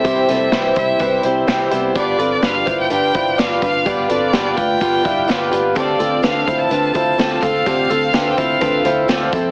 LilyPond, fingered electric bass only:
\new Staff \with { instrumentName = "Fingered electric bass" } { \clef bass \time 4/4 \key d \dorian \tempo 4 = 126 c,8 c,8 c,8 c,8 c,8 c,8 c,8 c,8 | g,,8 g,,8 g,,8 g,,8 g,,8 g,,8 g,,8 g,,8 | g,,8 g,,8 g,,8 g,,8 g,,8 g,,8 g,,8 g,,8 | d,8 d,8 d,8 d,8 d,8 d,8 d,8 d,8 |
d,8 d,8 d,8 d,8 d,8 d,8 d,8 f,8 | }